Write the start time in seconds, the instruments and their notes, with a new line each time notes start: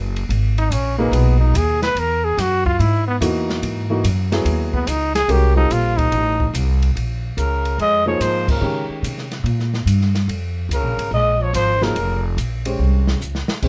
Already playing: upright bass F#1
0.16 ride
0.29 upright bass G#1, ride
0.58 trombone D#4, ride
0.70 upright bass A#1, trombone C#4, hi-hat pedal, ride
0.98 upright piano A#2 D#4 G#4 B4, trombone A#3
1.11 upright bass B1, trombone B3, ride
1.40 trombone D#4
1.54 upright bass D#2, trombone G#4, hi-hat pedal, ride
1.82 trombone B4, snare, ride
1.95 upright bass E2, ride
1.99 trombone A#4
2.24 trombone G#4
2.37 upright bass F#2, trombone F#4, snare, hi-hat pedal, ride
2.66 trombone F4, kick
2.79 upright bass G#2, trombone E4, ride
3.08 trombone B3
3.20 upright bass E2, upright piano E3 A#3 D#4 F#4, hi-hat pedal, ride
3.49 snare
3.62 upright bass G#2, ride
3.90 upright piano E3 A#3 D#4 F#4
4.04 upright bass F#2, hi-hat pedal, ride
4.32 upright piano F#3 B3 E4 G#4, snare, ride
4.45 upright bass D#2, ride
4.73 trombone B3, kick
4.87 upright bass C#2, trombone D#4, hi-hat pedal, ride
5.15 trombone G#4, snare, ride
5.28 upright bass C2, upright piano G#3 C#4 F#4 A#4, trombone G4, ride
5.56 upright piano G3 C4 F4 A4, trombone D#4
5.70 upright bass A#1, trombone F4, hi-hat pedal, ride
5.97 trombone D#4, kick, ride
6.12 upright bass A1, ride
6.40 kick
6.54 upright bass C2, hi-hat pedal, ride
6.82 ride
6.95 upright bass A#1, ride
7.37 upright bass C#2, trombone C#3, trumpet A#4, hi-hat pedal, ride
7.65 ride
7.78 upright bass F2, trombone G#3, trumpet D#5, ride
8.06 upright piano F3 A#3 D#4 G#4, trombone F3, trumpet C#5
8.20 upright bass G#2, trombone F3, trumpet C5, hi-hat pedal, ride
8.48 trombone C#3, trumpet A#4, kick, crash
8.61 upright bass C#3, upright piano D#3 G#3 C#4 G4
8.89 muted upright bass stroke
9.02 upright bass C3, hi-hat pedal, ride
9.18 snare
9.31 snare, ride
9.44 upright bass A#2, ride
9.60 snare
9.74 snare
9.86 upright bass G2, hi-hat pedal, ride
10.01 snare
10.15 snare, ride
10.28 upright bass F2, ride
10.69 upright bass C#2, hi-hat pedal, ride
10.74 trombone C#3, trumpet A#4
10.82 upright bass A#1
10.97 upright bass G#1, ride
11.11 upright bass A#1, trombone G#3, trumpet D#5
11.40 trombone F3, trumpet C#5
11.53 upright bass G#1, trombone F3, trumpet C5, hi-hat pedal, ride
11.80 trombone C#3, upright piano F3 A#3 D#4 G#4, trumpet A#4, snare
11.95 upright bass F1, ride
12.37 upright bass A#1, hi-hat pedal, ride
12.65 upright piano G#3 C#4 G4 C5, ride
12.79 upright bass C2
13.07 snare
13.21 upright bass C#2, hi-hat pedal
13.35 snare
13.48 muted upright bass stroke, snare
13.62 upright bass A#1, upright piano G#3 C#4 G4 C5, kick, crash